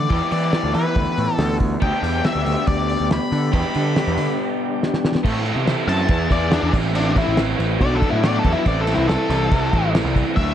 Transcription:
Already playing: lead electric guitar D5
0.09 picked electric bass E2, overdriven electric guitar E3 B3 E4 G4, kick, open hi-hat
0.31 picked electric bass E3, lead electric guitar D5, open hi-hat
0.53 snare, open hi-hat
0.64 picked electric bass D2
0.74 picked electric bass E3, lead electric guitar B4, open hi-hat
0.95 picked electric bass D2, kick, open hi-hat
1.18 picked electric bass A2, open hi-hat
1.34 lead electric guitar A4
1.39 picked electric bass D2, snare, open hi-hat
1.60 kick, open hi-hat
1.80 picked electric bass D2, tonewheel organ B2 D3 G3, overdriven electric guitar B3 D4 G4, lead electric guitar G5, kick, crash
1.84 tonewheel organ D4 G4
2.02 picked electric bass E2, open hi-hat
2.25 lead electric guitar E5, snare, open hi-hat
2.35 picked electric bass D2
2.46 picked electric bass D2, open hi-hat
2.67 picked electric bass D2, lead electric guitar D5, kick, open hi-hat
2.89 open hi-hat
3.00 picked electric bass D2
3.11 lead electric guitar B5, snare, open hi-hat
3.32 picked electric bass D3, open hi-hat
3.52 picked electric bass E2, overdriven electric guitar B3 D4 G4, lead electric guitar B5, kick, open hi-hat
3.75 picked electric bass D3, open hi-hat
3.96 snare, open hi-hat
4.07 picked electric bass E2
4.17 picked electric bass D3, open hi-hat
4.83 snare
4.94 snare
5.05 snare
5.15 snare
5.22 picked electric bass A2, tonewheel organ C3 E3 A3 B3 E4, overdriven electric guitar E3 C4 E4 A4, kick, crash
5.45 overdriven electric guitar E3 C4 E4 A4, crash
5.55 picked electric bass C3
5.65 overdriven electric guitar E3 C4 E4 A4, snare, crash
5.88 picked electric bass F#2, overdriven electric guitar E3 C4 E4 A4, lead electric guitar A5, crash
6.06 picked electric bass E2, tonewheel organ B2 G#3 G#4, overdriven electric guitar B3 E4 G#4, kick, crash
6.29 picked electric bass E2, overdriven electric guitar B3 E4 G#4, lead electric guitar D5, kick, crash
6.50 overdriven electric guitar B3 E4 G#4, lead electric guitar D4, snare, crash
6.63 picked electric bass E2
6.72 picked electric bass A1, tonewheel organ C3, overdriven electric guitar E3 C4 E4, kick, snare, crash
6.76 tonewheel organ A3 B3
6.93 overdriven electric guitar E3 C4 E4, lead electric guitar D4, crash
7.16 overdriven electric guitar E3 C4 E4, lead electric guitar E4, kick, crash
7.27 picked electric bass A1
7.36 overdriven electric guitar E3 C4 E4, snare, crash
7.57 picked electric bass A1, overdriven electric guitar E3 C4 E4, crash
7.78 picked electric bass B1, tonewheel organ B2 D3 F#3 D4 F#4, overdriven electric guitar F#3 B3 D4, lead electric guitar D5, kick, crash
7.95 lead electric guitar A4
8.02 overdriven electric guitar F#3 B3 D4, kick, crash
8.10 picked electric bass A2, lead electric guitar E4
8.23 overdriven electric guitar F#3 B3 D4, lead electric guitar D5, snare, crash
8.39 lead electric guitar A4
8.44 picked electric bass E2, overdriven electric guitar F#3 B3 D4, kick, crash
8.53 lead electric guitar E4
8.65 picked electric bass A1, tonewheel organ C3 E3 A3 B3 E4, overdriven electric guitar E3 C4 E4, lead electric guitar D5, kick, crash
8.81 lead electric guitar A4
8.87 overdriven electric guitar E3 C4 E4, crash
8.94 picked electric bass C2, lead electric guitar E4
9.07 overdriven electric guitar E3 C4 E4, lead electric guitar A4, snare, crash
9.30 picked electric bass C2, overdriven electric guitar E3 C4 E4, crash
9.51 picked electric bass C2, overdriven electric guitar E3 C4 E4, kick, crash
9.73 picked electric bass A1, overdriven electric guitar E3 C4 E4, kick, crash
9.94 overdriven electric guitar E3 C4 E4, snare, crash
10.04 picked electric bass C2
10.14 overdriven electric guitar E3 C4 E4, kick, crash
10.36 picked electric bass D2, tonewheel organ D3 F#3, overdriven electric guitar F#3 A3 D4, lead electric guitar E5, kick, crash

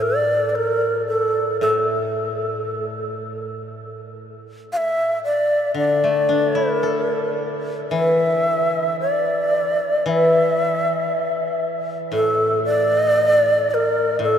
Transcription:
Already playing: koto A2
0.02 shakuhachi D5
0.49 shakuhachi D5
0.56 shakuhachi A#4
1.07 shakuhachi A4
1.61 koto A2, shakuhachi A4
4.73 shakuhachi F5
4.77 shakuhachi E5
5.25 shakuhachi D5
5.74 koto D3, shakuhachi D5
6.04 koto A3
6.29 koto D4
6.55 koto E4
6.81 koto A4, shakuhachi A#4
7.91 koto E3, shakuhachi E5
9.01 shakuhachi D5
10.06 koto E3, shakuhachi F5
10.11 shakuhachi E5
12.12 koto A2, shakuhachi A4
12.64 shakuhachi D5
13.71 shakuhachi A#4 D5
14.19 koto A2, shakuhachi A4

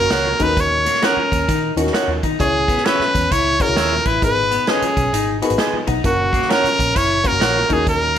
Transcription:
Already playing: upright piano A#3 C#4 F#4 A#4, trumpet A#4
0.11 picked electric bass C#2, clean electric guitar A#4 C#5 F#5, snare, closed hi-hat
0.39 picked electric bass D#2, upright piano C#4 D#4 F#4 A4, clean electric guitar D#4, trumpet B4, kick, closed hi-hat
0.45 upright piano A#4
0.57 trumpet C#5, kick, closed hi-hat
0.86 clean electric guitar A#3, closed hi-hat
0.95 snare
1.02 clean electric guitar C#4 A#4 C#5 F#5, trumpet A#4, snare, closed hi-hat
1.17 muted picked electric bass stroke
1.32 picked electric bass D#2, kick, closed hi-hat
1.49 picked electric bass D#3, clean electric guitar D#4, kick, closed hi-hat
1.77 picked electric bass D#2, upright piano C#4 D#4 F#4 A#4, clean electric guitar F#4, closed hi-hat
1.87 snare
1.93 clean electric guitar A#4 C#5 F#5, snare, closed hi-hat
2.08 picked electric bass D#2
2.23 picked electric bass D#3, clean electric guitar D#4, kick, closed hi-hat
2.40 picked electric bass C#2, upright piano C#4 E4 G#4 C#5, trumpet G#4, kick, closed hi-hat
2.68 clean electric guitar B3, kick, closed hi-hat
2.78 snare
2.84 clean electric guitar C#4 G#4 C#5 E5, trumpet B4, snare, closed hi-hat
3.00 muted picked electric bass stroke, snare
3.15 picked electric bass E2, kick, closed hi-hat
3.31 picked electric bass C#2, clean electric guitar E4, trumpet C#5, kick, closed hi-hat
3.60 upright piano C#4 E4 G#4 C#5, clean electric guitar F#4, trumpet A#4, kick, closed hi-hat
3.68 picked electric bass C#2
3.76 picked electric bass D#2, clean electric guitar G#4 C#5 E5, snare, closed hi-hat
4.05 picked electric bass A1, clean electric guitar E4, trumpet B4, kick, closed hi-hat
4.22 picked electric bass G#1, upright piano B3 D#4 G#4 A#4, trumpet B4, kick, closed hi-hat
4.28 upright piano B4
4.51 clean electric guitar B3, closed hi-hat
4.67 clean electric guitar C#4 G#4 B4 D#5, trumpet G#4, snare, closed hi-hat
4.82 muted picked electric bass stroke, closed hi-hat
4.97 picked electric bass B1, kick, closed hi-hat
5.13 picked electric bass G#1, clean electric guitar D#4, closed hi-hat
5.42 upright piano B3 D#4 G#4 A#4 B5, clean electric guitar F#4, closed hi-hat
5.48 picked electric bass G#1, upright piano B4, closed hi-hat
5.58 clean electric guitar G#4 B4 D#5, upright piano G#5, snare, closed hi-hat
5.73 muted picked electric bass stroke
5.87 picked electric bass B1, clean electric guitar D#4, upright piano F#5, kick, closed hi-hat
6.04 picked electric bass F#1, upright piano A#3 C#4 F#4 A#4, trumpet F#4, kick, closed hi-hat
6.33 clean electric guitar A#3, kick, closed hi-hat
6.42 snare
6.49 clean electric guitar C#4 A#4 C#5 F#5, trumpet A#4, snare, closed hi-hat
6.64 muted picked electric bass stroke, closed hi-hat
6.79 picked electric bass A#1, kick, closed hi-hat
6.95 picked electric bass F#1, clean electric guitar E4, trumpet C#5, kick, closed hi-hat
7.24 upright piano A#3 C#4 F#4 A#4, clean electric guitar F#4, trumpet A#4, kick, closed hi-hat
7.32 picked electric bass F#1
7.40 picked electric bass A#1, clean electric guitar A#4 C#5 F#5, snare, closed hi-hat
7.69 picked electric bass D#2, upright piano C#4 D#4 F#4 A#4, clean electric guitar D#4, trumpet G#4, kick, closed hi-hat
7.87 trumpet A#4, kick, closed hi-hat
8.15 clean electric guitar A#3

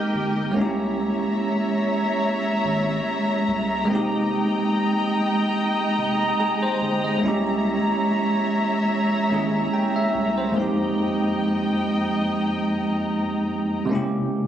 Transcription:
Already playing: tine electric piano G#3 A#3 C4 D#4 G4, string section G4 A#4 D#5 G5
0.14 analog synth bass G1
0.52 tine electric piano G#3 A#3, string section G#3 C#5 E5
0.56 analog synth bass C2, tine electric piano C#4 D#4, string section A#5
0.62 tine electric piano G4
0.66 tine electric piano E4
1.21 analog synth bass G#1
2.65 analog synth bass G#1
3.48 analog synth bass C2
3.85 tine electric piano G#3 A#3
3.89 analog synth bass F1, tine electric piano C4 D#4, string section D#5 G5
3.95 tine electric piano G4
4.54 analog synth bass F1
5.98 analog synth bass F1
6.40 tine electric piano G#4
6.63 tine electric piano C5
6.81 analog synth bass G1
7.04 tine electric piano D#5
7.18 tine electric piano G#3 A#3
7.23 analog synth bass C2, tine electric piano C#4 E4, string section C#5 E5
7.28 tine electric piano G4
7.87 analog synth bass G#1
9.29 analog synth bass G#1, tine electric piano G#3 A#3 C#4 E4
9.34 tine electric piano G#4
9.73 tine electric piano G5
9.96 tine electric piano E5
10.15 analog synth bass C2
10.38 tine electric piano C5
10.52 tine electric piano F2 G#3 A#3
10.56 string section F3 D#5 G5, tine electric piano C4 D#4
10.62 tine electric piano G4
13.85 tine electric piano C3 G#3 A#3
13.91 tine electric piano C#4 E4 G4

